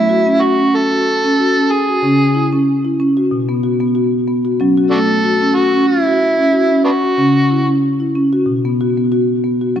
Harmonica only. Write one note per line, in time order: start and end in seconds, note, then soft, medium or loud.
0.00 0.43 E4 medium
0.42 0.77 F#4 medium
0.76 1.73 A4 medium
1.71 2.68 G#4 medium
4.91 4.99 D4 medium
4.91 4.98 F#4 medium
4.91 5.56 A4 medium
5.55 5.88 F#4 medium
5.87 6.84 E4 medium
6.85 6.91 B3 soft
6.85 6.91 D4 soft
6.85 7.78 F#4 medium